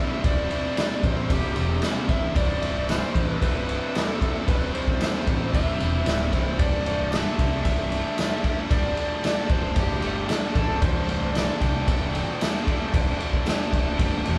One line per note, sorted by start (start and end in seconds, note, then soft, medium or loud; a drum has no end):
0.00 0.23 C2 medium
0.00 0.23 G2 medium
0.00 0.24 C3 medium
0.00 0.25 G3 medium
0.00 6.56 C4 medium
0.00 0.25 E4 medium
0.00 0.21 E5 medium
0.00 6.55 E5 medium
0.00 2.32 G5 medium
0.23 0.46 C1 medium
0.23 1.28 C2 medium
0.23 0.74 G2 medium
0.23 0.51 C3 medium
0.23 0.50 G3 medium
0.23 0.49 E4 loud
0.23 1.07 D5 loud
0.23 kick loud
0.23 ride medium
0.50 0.76 C3 medium
0.50 0.76 G3 medium
0.50 0.77 E4 medium
0.50 ride medium
0.75 1.28 G2 medium
0.75 1.29 C3 medium
0.75 1.30 G3 medium
0.75 1.30 E4 medium
0.75 snare loud
0.75 ride medium
0.75 tambourine medium
1.03 1.25 A1 medium
1.03 1.30 C5 medium
1.03 kick medium
1.03 ride medium
1.29 1.41 E1 medium
1.29 2.35 C2 medium
1.29 1.81 G2 medium
1.29 1.57 C3 medium
1.29 1.56 G3 medium
1.29 1.55 E4 loud
1.29 1.81 G4 medium
1.29 kick medium
1.29 ride medium
1.43 1.54 C1 medium
1.55 1.78 E1 medium
1.55 1.83 C3 soft
1.55 1.83 G3 medium
1.55 1.84 E4 medium
1.55 ride medium
1.82 2.35 G2 medium
1.82 2.10 C3 medium
1.82 2.09 G3 medium
1.82 2.09 E4 medium
1.82 snare loud
1.82 ride medium
1.82 tambourine loud
2.09 2.20 G1 medium
2.09 2.36 C3 medium
2.09 2.37 G3 medium
2.09 2.37 E4 medium
2.09 2.37 E5 medium
2.09 kick medium
2.09 ride medium
2.21 2.33 C1 medium
2.35 3.00 C1 medium
2.35 3.41 C2 medium
2.35 2.87 G2 medium
2.35 2.63 C3 loud
2.35 2.62 G3 medium
2.35 2.61 E4 loud
2.35 2.90 D5 medium
2.35 6.55 A5 medium
2.35 kick loud
2.35 ride medium
2.61 2.89 C3 medium
2.61 2.89 G3 medium
2.61 2.90 E4 medium
2.61 ride medium
2.88 3.41 G2 medium
2.88 3.41 C3 medium
2.88 3.43 G3 medium
2.88 3.43 E4 medium
2.88 3.26 C5 medium
2.88 snare medium
2.88 ride medium
2.88 tambourine medium
3.15 3.37 A1 medium
3.15 kick medium
3.15 ride medium
3.26 3.39 B4 medium
3.41 3.53 C1 medium
3.41 3.95 C2 medium
3.41 3.93 G2 medium
3.41 3.69 C3 medium
3.41 3.69 G3 medium
3.41 3.67 E4 medium
3.41 3.96 B4 medium
3.41 kick medium
3.41 ride medium
3.55 3.76 C1 medium
3.68 3.94 C3 medium
3.68 3.96 G3 medium
3.68 3.95 E4 medium
3.68 ride medium
3.94 4.47 G2 medium
3.94 4.22 C3 medium
3.94 4.22 G3 medium
3.94 4.20 E4 medium
3.94 4.48 A4 medium
3.94 snare loud
3.94 ride medium
3.94 tambourine medium
4.21 4.48 C3 medium
4.21 4.49 G3 medium
4.21 4.49 E4 medium
4.21 kick medium
4.21 ride medium
4.48 4.69 C1 medium
4.48 5.01 C2 medium
4.48 5.00 G2 medium
4.48 4.75 C3 medium
4.48 4.75 G3 loud
4.48 4.73 E4 medium
4.48 4.75 B4 medium
4.48 kick loud
4.48 ride medium
4.75 5.01 C3 medium
4.75 5.02 G3 medium
4.75 5.02 E4 medium
4.75 5.50 C5 medium
4.75 ride medium
4.88 kick medium
5.01 5.52 G2 medium
5.01 5.53 C3 medium
5.01 5.54 G3 medium
5.01 5.54 E4 medium
5.01 snare loud
5.01 ride medium
5.01 tambourine medium
5.27 5.49 A1 medium
5.27 kick medium
5.27 ride medium
5.53 5.65 E1 medium
5.53 6.06 C2 medium
5.53 6.06 G2 medium
5.53 5.81 C3 medium
5.53 5.81 G3 medium
5.53 5.79 E4 medium
5.53 6.29 E5 medium
5.53 kick medium
5.53 ride medium
5.67 5.78 C1 medium
5.80 6.02 E1 medium
5.80 6.07 C3 medium
5.80 6.08 G3 medium
5.80 6.08 E4 medium
5.80 ride medium
6.06 6.30 D1 medium
6.06 6.58 G2 medium
6.06 6.33 C3 medium
6.06 6.33 G3 medium
6.06 6.31 E4 medium
6.06 snare loud
6.06 ride medium
6.06 tambourine medium
6.32 6.57 C1 medium
6.32 6.59 C3 medium
6.32 6.60 G3 medium
6.32 6.58 E4 medium
6.32 6.60 C5 medium
6.32 kick medium
6.32 ride medium
6.58 7.23 C1 medium
6.58 7.12 D2 medium
6.58 7.12 A2 medium
6.58 6.86 D3 medium
6.58 6.86 G3 medium
6.58 6.85 A3 medium
6.58 6.84 D4 medium
6.58 14.38 A4 medium
6.58 7.13 D5 medium
6.58 10.79 D5 medium
6.58 14.38 G5 medium
6.58 kick loud
6.58 ride medium
6.85 7.11 D3 medium
6.85 7.13 G3 medium
6.85 7.13 A3 medium
6.85 7.14 D4 medium
6.85 ride medium
7.12 7.64 D3 medium
7.12 7.65 G3 medium
7.12 7.66 A3 medium
7.12 7.66 D4 medium
7.12 7.61 E5 medium
7.12 snare loud
7.12 ride medium
7.12 tambourine medium
7.39 7.60 C2 loud
7.39 kick medium
7.39 ride medium
7.63 7.76 C1 medium
7.63 8.18 D2 medium
7.63 8.18 A2 medium
7.63 7.92 D3 loud
7.63 7.92 G3 medium
7.63 7.92 A3 medium
7.63 7.91 D4 loud
7.63 8.70 E5 medium
7.63 kick medium
7.63 ride medium
7.78 8.00 C1 medium
7.91 8.16 D3 medium
7.91 8.18 G3 medium
7.91 8.18 A3 medium
7.91 8.19 D4 medium
7.91 ride medium
8.18 8.45 D3 medium
8.18 8.45 G3 medium
8.18 8.45 A3 medium
8.18 8.44 D4 medium
8.18 snare loud
8.18 ride medium
8.18 tambourine loud
8.44 8.71 D3 medium
8.44 8.72 G3 medium
8.44 8.73 A3 medium
8.44 8.73 D4 medium
8.44 kick medium
8.44 ride medium
8.71 8.92 C1 medium
8.71 9.24 D2 medium
8.71 9.24 A2 medium
8.71 8.98 D3 medium
8.71 8.98 G3 medium
8.71 8.98 A3 medium
8.71 8.97 D4 loud
8.71 9.52 D5 medium
8.71 kick loud
8.71 ride medium
8.97 9.22 D3 medium
8.97 9.24 G3 medium
8.97 9.24 A3 medium
8.97 9.25 D4 medium
8.97 ride medium
9.23 9.75 D3 medium
9.23 9.76 G3 medium
9.23 9.76 A3 medium
9.23 9.77 D4 medium
9.23 snare loud
9.23 ride medium
9.23 tambourine medium
9.49 9.71 C1 medium
9.49 9.78 C5 medium
9.49 kick medium
9.49 ride medium
9.75 9.87 F#1 medium
9.75 10.29 D2 medium
9.75 10.29 A2 medium
9.75 10.03 D3 medium
9.75 10.04 G3 medium
9.75 10.03 A3 loud
9.75 10.02 D4 loud
9.75 10.27 G4 medium
9.75 kick medium
9.75 ride medium
9.91 10.01 C1 medium
10.02 10.25 G1 medium
10.02 10.27 D3 medium
10.02 10.29 G3 medium
10.02 10.29 A3 medium
10.02 10.30 D4 medium
10.02 ride medium
10.28 10.55 D3 medium
10.28 10.56 G3 medium
10.28 10.55 A3 medium
10.28 10.54 D4 medium
10.28 snare medium
10.28 ride medium
10.28 tambourine medium
10.55 10.66 A1 medium
10.55 10.80 D3 medium
10.55 10.81 G3 medium
10.55 10.82 A3 medium
10.55 10.82 D4 medium
10.55 10.83 A4 medium
10.55 kick medium
10.55 ride medium
10.68 10.79 C1 medium
10.80 11.46 C1 medium
10.80 11.34 D2 medium
10.80 11.34 A2 medium
10.80 11.08 D3 medium
10.80 11.09 G3 medium
10.80 11.08 A3 loud
10.80 11.07 D4 loud
10.80 11.33 C5 medium
10.80 14.38 E5 medium
10.80 kick loud
10.80 ride medium
11.08 11.33 D3 medium
11.08 11.35 G3 medium
11.08 11.35 A3 medium
11.08 11.36 D4 medium
11.08 ride medium
11.33 11.87 D3 medium
11.33 11.89 G3 medium
11.33 11.88 A3 medium
11.33 11.88 D4 medium
11.33 11.61 D5 medium
11.33 snare loud
11.33 ride medium
11.33 tambourine medium
11.61 11.83 C2 medium
11.61 14.38 G5 medium
11.61 kick medium
11.61 ride medium
11.88 11.98 C1 medium
11.88 12.41 D2 medium
11.88 12.41 A2 medium
11.88 12.15 D3 medium
11.88 12.15 G3 medium
11.88 12.13 A3 loud
11.88 12.13 D4 medium
11.88 kick medium
11.88 ride medium
12.02 12.23 C1 medium
12.14 12.39 D3 medium
12.14 12.40 G3 medium
12.14 12.41 A3 medium
12.14 12.41 D4 medium
12.14 ride medium
12.40 12.67 D3 medium
12.40 12.68 G3 medium
12.40 12.67 A3 medium
12.40 12.66 D4 medium
12.40 snare loud
12.40 ride medium
12.40 tambourine loud
12.67 12.92 D3 medium
12.67 12.92 G3 medium
12.67 12.93 A3 medium
12.67 12.93 D4 medium
12.67 kick medium
12.67 ride medium
12.92 13.15 C1 medium
12.92 13.46 D2 medium
12.92 13.46 A2 medium
12.92 13.19 D3 loud
12.92 13.19 G3 loud
12.92 13.18 A3 loud
12.92 13.17 D4 medium
12.92 kick loud
12.92 ride medium
13.18 13.44 D3 medium
13.18 13.45 G3 medium
13.18 13.46 A3 medium
13.18 13.46 D4 medium
13.18 ride medium
13.33 kick medium
13.46 13.98 D3 medium
13.46 13.99 G3 medium
13.46 13.99 A3 medium
13.46 13.99 D4 medium
13.46 snare loud
13.46 ride medium
13.46 tambourine medium
13.73 13.94 C1 medium
13.73 kick medium
13.73 ride medium
13.98 14.10 F#1 medium
13.98 14.38 D2 medium
13.98 14.38 A2 medium
13.98 14.25 D3 medium
13.98 14.24 G3 medium
13.98 14.24 A3 medium
13.98 14.23 D4 loud
13.98 kick medium
13.98 ride medium
14.13 14.23 C1 medium
14.24 14.38 E1 medium
14.24 14.38 D3 medium
14.24 14.38 G3 medium
14.24 14.38 A3 medium
14.24 14.38 D4 medium
14.24 ride medium